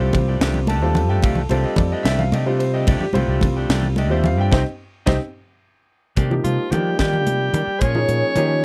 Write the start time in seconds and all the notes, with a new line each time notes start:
Already playing: G3 C4 F4 C5
0.00 C2 A3 D4 G4
0.13 C2, kick, ride, muted conga, low conga
0.28 A3 D4 G4
0.40 C2 D#3 A3 D4 G4, snare, ride
0.54 low conga
0.67 D#3 A3 D4 G4 A5, ride, muted conga, high conga
0.82 D#2 G3 A3 C4 D4 F4 G4 A4, low conga
0.95 ride, low conga
1.09 G2 A3 D4 G4 G5
1.22 C2 D#3 A3 D4 G4 F5, kick, ride, muted conga
1.35 A4, low conga
1.49 C2 D#3 G3 A3 C4 D4 F4 G4 A4 C5, ride, high conga
1.63 A3 D4 G4 D#5
1.76 F2 D5, kick, ride, muted conga, low conga
1.92 A3 D4 G4 D#5
2.03 C2 D#3 A3 D4 G4 E5, snare, ride
2.19 F5, low conga
2.32 C3 D#3 A3 D4 G4 D#5, ride, muted conga, high conga
2.46 G3 A3 C4 D4 F4 G4 C5, low conga
2.59 C5, ride
2.73 A3 D4 G4 D#5
2.87 C2 D#3 A3 D4 G4 D5, kick, ride, muted conga
3.00 G4, low conga
3.13 C2 D#3 G3 A3 C4 D4 F4 G4 C5, ride, high conga
3.28 C2 A3 D4 G4
3.41 C2, kick, ride, muted conga, low conga
3.57 A3 D4 G4
3.69 C2 D#3 A3 D4 G4, snare, ride
3.83 low conga
3.96 D#3 A3 D4 G4 D#5, ride, muted conga
4.10 D#2 G3 A3 C4 D4 F4 G4 C5 E5, low conga
4.24 F5, ride, low conga
4.38 G2 A3 D4 G4 G5
4.51 C2 A3 C4 D#4 G4 C5 D#5 G5, kick, snare, muted conga
5.06 C2 A3 C4 D#4 G4 C5 D#5 G5, kick, snare, muted conga
6.16 C3 D#3 A#3 D4 G4, kick, closed hi-hat, muted conga
6.31 F3 A#3 D#4 G4, low conga
6.44 C3 F3 F4, closed hi-hat, high conga, low conga
6.71 D#3 F3 G3 A#3 D4 D#4 F4 G4, closed hi-hat, muted conga, low conga
6.87 low conga
6.99 D#3 G3 A#3 D4 G4, kick, snare, closed hi-hat
7.13 low conga
7.26 C3, closed hi-hat, muted conga, high conga, low conga
7.41 low conga
7.53 D#3 A#3 D4 G4, closed hi-hat, low conga
7.67 muted fretless electric bass stroke
7.81 A#2 F3 A#3 C#4 G#4 C#5, kick, closed hi-hat, muted conga
7.95 F3 A#3 D#4 G#4, low conga
8.08 A#2, closed hi-hat, high conga, low conga
8.36 D#3 F3 A#3 C#4 D#4 G4 G#4, closed hi-hat, muted conga, low conga
8.49 low conga